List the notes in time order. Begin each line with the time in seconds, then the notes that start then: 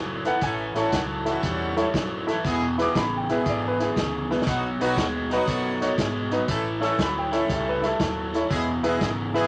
Already playing: F#1 A2 F#3 G#5
0.25 A2 E3 E4 A4 B4 F#5, snare, closed hi-hat
0.41 A1 A2 E3 A3 C#4 E4 A4 G#5, kick, closed hi-hat
0.75 A1 A2 E3 F#3 C#4 E4 F#4 A4 C#5 A5, snare, closed hi-hat
0.92 C#2 A2 F#3, kick, snare, closed hi-hat
1.25 A2 E3 F#3 C#4 E4 F#4 A4 E5, snare, closed hi-hat
1.43 E2 A2 G3, kick, closed hi-hat
1.77 A2 G3 E4 A4 C#5, snare, closed hi-hat
1.94 F#2 A2 F#3, kick, snare, closed hi-hat
2.27 A2 E3 E4 A4 E5, snare, closed hi-hat
2.43 E1 E2 B2 G#3 B3 E4 G#4, kick, snare, closed hi-hat
2.78 E2 B2 G#3 B3 E4 G#4 B4, snare, closed hi-hat
2.82 D6
2.95 A1 E2 C#3 B5, kick, snare, closed hi-hat
3.17 G5
3.28 E2 B2 G#3 B3 E4 G#4 B4, snare, closed hi-hat
3.32 E5
3.46 G#1 E2 D3 D5, kick, snare, closed hi-hat
3.68 B4
3.80 E2 D3 E4 G#4 B4, snare, closed hi-hat
3.96 D2 E2 C#3, kick, snare, closed hi-hat
4.30 E2 B2 E4 G#4 B4, snare
4.42 B3, snare
4.46 B1 B2 F#3 D#4 F#4, kick, snare, closed hi-hat
4.80 B1 B2 F#3 B3 D#4 F#4 B4, snare, closed hi-hat
4.96 D#2 B2 G#3, kick, snare, closed hi-hat
5.29 B2 F#3 B3 D#4 F#4, snare, closed hi-hat
5.33 B4
5.46 F#2 B2 A3, kick, closed hi-hat
5.81 B2 A3 D#4 F#4 C#5, snare, closed hi-hat
5.98 G#2 B2 G#3, kick, snare, closed hi-hat
6.31 B2 F#3 D#4 F#4 B4, snare, closed hi-hat
6.47 A1 A2 E3 A3 C#4 E4 A4, kick, closed hi-hat
6.79 A2 E3 A3 C#4 E4 A4 C#5, closed hi-hat
6.83 E6, snare
6.98 D2 A2 F#3, kick, snare, closed hi-hat
7.02 B5
7.18 G5
7.31 A2 E3 A3 C#4 E4 A4 C#5 E5, snare, closed hi-hat
7.47 C#2 A2 G3, kick, closed hi-hat
7.52 E5
7.69 B4
7.82 A2 G3 E4 A4 E5, snare, closed hi-hat
7.86 A4
7.99 D#2 A2 F#3, kick, snare, closed hi-hat
8.33 A2 E3 E4 A4 C#5, snare, closed hi-hat
8.48 E1 E2 B2 G#3 B3 E4 G#4, kick, closed hi-hat
8.83 E1 E2 B2 G#3 B3 E4 G#4 B4, snare, closed hi-hat
9.01 G#1 E2 C#3, kick, snare, closed hi-hat
9.34 E2 B2 G#3 B3 E4 G#4 B4, snare, closed hi-hat